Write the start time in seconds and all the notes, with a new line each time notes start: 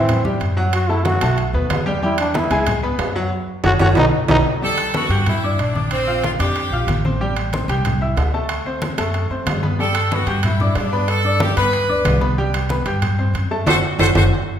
Already playing: A2 E3 C4 E4 E5
0.09 high conga, low conga, high timbale
0.25 G3 G4 G5, high conga, low conga
0.40 F#2, high conga, high timbale
0.57 F#3 F#4 F#5
0.73 F#4, high timbale
0.89 A3 E4 A4 A5, high conga
1.05 F#3 F#4 F#5, high conga, high timbale
1.21 B1 A3 A4 A5, high conga, high timbale
1.38 high conga, high timbale
1.53 D#2 B3 B4 B5, high conga
1.70 E2, high conga, high timbale, low timbale
1.86 G3 G4 G5
2.03 G3 E4 G4 G5, high conga
2.18 D4, high conga, high timbale
2.34 B3 E4 B4 B5, high conga, high timbale
2.50 C#2 G#3 G#4 G#5, high conga, high timbale
2.67 high conga, low conga, high timbale
2.83 B3 B4 B5, high conga
2.99 F#2, high conga, high timbale, low timbale
3.16 F#3 F#4 F#5
3.64 F#1 F#4 A4 C#5, high conga, high timbale
3.79 F#1 F#4 A4 C#5, high conga, high timbale
3.95 B1 D#4 F#4 A4 B4, high conga, high timbale
4.28 B1 D#4 F#4 A4 B4, high conga, high timbale
4.62 G3 G4 A4 G5, high conga
4.78 high conga, high timbale
4.94 B3 F#4 B4 B5, high conga, high timbale
5.09 G2 G4 G5 G6, high conga, high timbale
5.26 E4, high conga, low conga, high timbale
5.43 D4 D5 D6, high conga
5.58 A#1 D4, high conga, high timbale
5.75 D4 D5 D6, high conga
5.91 C4, high conga, high timbale
6.07 F4 F5 F6, high conga
6.23 F4, high conga, high timbale
6.39 F2 D4 G4 D5 D6, high conga, high timbale
6.56 high conga, high timbale
6.70 A#1 F4 F5 F6, high conga
6.87 A1, high conga, high timbale
7.05 C4 C5 C6, high conga
7.21 G3 G4 G5, high conga
7.37 high conga, high timbale
7.53 C4 C5 C6, high conga, high timbale
7.68 C2 G4 G5 G6, high conga, high timbale
7.85 high conga, low conga, high timbale
8.01 E4 E5 E6, high conga
8.17 D2, high conga, high timbale, low timbale
8.34 A3 A4 A5
8.49 high conga, high timbale
8.66 C4 C5 C6, high conga
8.82 high conga, high timbale
8.98 F#2 A3 A4 A5, high conga, high timbale
9.14 high conga, high timbale
9.30 F#2 C4 C5 C6, high conga
9.46 G2, high conga, high timbale, low timbale
9.63 B3 B4 B5, high conga
9.79 G3 G4 A4 G5, high conga
9.95 high conga, high timbale
10.11 B3 F#4 B4 B5, high conga, high timbale
10.26 G2 G4 G5 G6, high conga, high timbale
10.43 E4, high conga, low conga, high timbale
10.60 D4 D5 D6, high conga, low conga
10.75 G2 D4, high conga, high timbale, low timbale
10.92 B3 B4 B5
11.08 A4, high conga, high timbale
11.24 D4 D5 D6, high conga
11.40 G4, high conga, high timbale
11.57 G2 B3 B4 B5, high conga, high timbale
11.73 high conga, high timbale
11.88 D2 D4 D5 D6, high conga
12.05 C2, high conga, high timbale, low timbale
12.21 B3 B4 B5, high conga
12.38 G3 G4 G5, high conga
12.54 high conga, high timbale
12.69 B3 B4 B5, high conga, high timbale
12.86 G2 G4 G5 G6, high conga, high timbale
13.02 high conga, low conga, high timbale
13.19 C4 C5 C6, high conga
13.34 F#2, high conga, high timbale
13.51 A3 A4 A5
13.66 F#1 F#4 A4 C5, high conga, high timbale
13.99 F#1 F#4 A4 C5, high conga, high timbale
14.15 F#1 F#4 A4 C5, high conga, high timbale